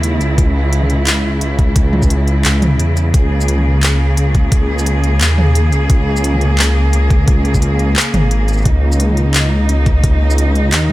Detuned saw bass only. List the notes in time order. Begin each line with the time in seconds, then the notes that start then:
Already playing: D#2
0.21 C#2
0.38 C#2
1.42 C#2
2.45 C#2
2.79 E2
3.14 C#2
4.17 C#2
5.21 D#2
5.72 C#2
5.90 C#2
6.93 C#2
8.14 G#1
8.66 C#2
9.69 C#2
10.72 D#2